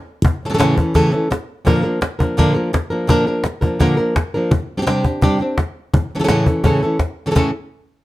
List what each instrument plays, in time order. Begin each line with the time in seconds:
0.22 muted nylon-string guitar stroke, cajon bass
0.43 nylon-string guitar C#3 E3 A3 C#4 A4, cajon slap
0.50 nylon-string guitar C#3 E3 A3 C#4 A4
0.54 nylon-string guitar C#3 E3 A3 C#4 A4
0.58 nylon-string guitar A2 C#3 E3 A3 C#4 A4, cajon slap
0.77 nylon-string guitar E3 C#4 A4, cajon bass
0.94 nylon-string guitar A2 C#3 E3 A3 C#4 A4, cajon bass, cajon slap
1.12 nylon-string guitar E3 A3 C#4 A4
1.30 muted nylon-string guitar stroke, cajon slap
1.65 nylon-string guitar A#2 D3 F3 A#3 D4 A#4, cajon bass
1.83 nylon-string guitar F3 A#3 D4 A#4, cajon slap
2.01 muted nylon-string guitar stroke, cajon slap
2.19 nylon-string guitar F3 A#3 D4 A#4, cajon bass
2.37 nylon-string guitar A#2 D3 F3 A#3 D4 A#4, cajon bass, cajon slap
2.55 nylon-string guitar F3 A#3 D4, cajon slap
2.73 muted nylon-string guitar stroke, cajon bass, cajon slap
2.90 nylon-string guitar F3 A#3 D4 A#4
3.07 nylon-string guitar A#2 D3 F3 A#3 D4 A#4, cajon bass
3.27 nylon-string guitar F3 A#3 D4 A#4
3.44 muted nylon-string guitar stroke, cajon slap
3.61 nylon-string guitar F3 A#3 D4 A#4, cajon bass
3.79 nylon-string guitar A#2 D3 F3 A#3 D4 A#4, cajon bass, cajon slap
3.97 nylon-string guitar F3 A#3 D4 A#4, cajon slap
4.16 muted nylon-string guitar stroke, cajon bass, cajon slap
4.34 nylon-string guitar F3 A#3 D4 A#4
4.51 muted nylon-string guitar stroke, cajon bass
4.77 nylon-string guitar G3 C4 D4 G4
4.82 nylon-string guitar G3 C4 D4 G4
4.86 nylon-string guitar C3 G3 C4 D4 G4, cajon slap
5.04 nylon-string guitar C4 D4 G4, cajon bass
5.21 nylon-string guitar C3 G3 C4 D4 G4, cajon bass
5.40 nylon-string guitar C4 D4 G4, cajon slap
5.58 muted nylon-string guitar stroke, cajon bass, cajon slap
5.94 muted nylon-string guitar stroke, cajon bass
6.11 cajon slap
6.15 nylon-string guitar C#3 E3 A3 C#4 A4
6.19 nylon-string guitar C#3 E3 A3 C#4 A4
6.24 nylon-string guitar C#3 E3 A3 C#4 A4
6.28 nylon-string guitar A2 C#3 E3 A3 C#4 A4, cajon slap
6.46 nylon-string guitar E3 A3 C#4 A4, cajon bass
6.64 nylon-string guitar A2 C#3 E3 A3 C#4 A4, cajon bass
6.82 nylon-string guitar E3 A3 C#4 A4, cajon slap
6.99 muted nylon-string guitar stroke, cajon bass, cajon slap
7.26 nylon-string guitar C#3 E3 A3 C#4 A4
7.31 nylon-string guitar C#3 E3 A3 C#4 A4
7.35 nylon-string guitar A2 C#3 E3 A3 C#4 A4, cajon bass